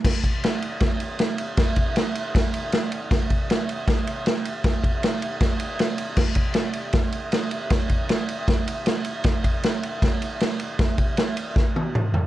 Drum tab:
CC |x-------|--------|--------|--------|
RD |-xxxxxxx|xxxxxxxx|xxxxxxxx|xxxxxxxx|
SD |o-o-o-o-|o-o-o-o-|o-o-o-o-|o-o-o-o-|
T1 |--------|--------|--------|--------|
T2 |--------|--------|--------|--------|
FT |--------|--------|--------|--------|
BD |oo--o---|oo--o---|oo--o---|oo--o---|

CC |x-------|--------|--------|--------|
RD |-xxxxxxx|xxxxxxxx|xxxxxxxx|xxxx----|
SD |o-o-o-o-|o-o-o-o-|o-o-o-o-|o-o-o---|
T1 |--------|--------|--------|-----o--|
T2 |--------|--------|--------|------o-|
FT |--------|--------|--------|-------o|
BD |oo--o---|oo--o---|oo--o---|oo--o---|